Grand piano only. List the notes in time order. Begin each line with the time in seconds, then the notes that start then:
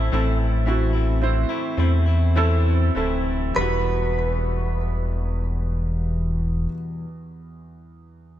Already playing: A2 E3 C4 E4 A4 C5
0.12 C4 E4 A4
0.66 C4 E4 F#4
1.22 C4 E4 C5
1.77 C4 E4 C5
2.36 C4 E4 A4
2.95 C4 E4 A4
3.54 E2 G3 E4
3.61 F#4